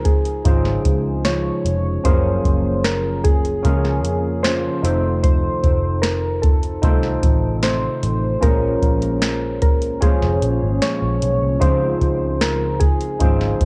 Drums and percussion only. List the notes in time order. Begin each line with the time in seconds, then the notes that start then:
0.05 kick, closed hi-hat
0.25 closed hi-hat
0.45 kick, closed hi-hat
0.65 snare
0.85 kick, closed hi-hat
1.25 snare, closed hi-hat
1.66 closed hi-hat
2.05 kick, closed hi-hat
2.45 kick, closed hi-hat
2.84 snare, closed hi-hat
3.25 kick, closed hi-hat
3.45 closed hi-hat
3.65 kick, closed hi-hat
3.85 snare
4.05 closed hi-hat
4.44 snare, closed hi-hat
4.85 closed hi-hat
5.24 kick, closed hi-hat
5.64 kick, closed hi-hat
6.03 snare, closed hi-hat
6.43 kick, closed hi-hat
6.63 closed hi-hat
6.83 kick, closed hi-hat
7.03 snare
7.23 kick, closed hi-hat
7.63 snare, closed hi-hat
8.03 closed hi-hat
8.43 kick, closed hi-hat
8.82 kick, closed hi-hat
9.02 closed hi-hat
9.22 snare, closed hi-hat
9.62 kick, closed hi-hat
9.82 closed hi-hat
10.02 kick, closed hi-hat
10.22 snare
10.42 closed hi-hat
10.82 snare, closed hi-hat
11.22 closed hi-hat
11.62 kick, closed hi-hat
12.01 kick, closed hi-hat
12.41 snare, closed hi-hat
12.81 kick, closed hi-hat
13.01 closed hi-hat
13.20 kick, closed hi-hat
13.41 snare
13.61 kick, closed hi-hat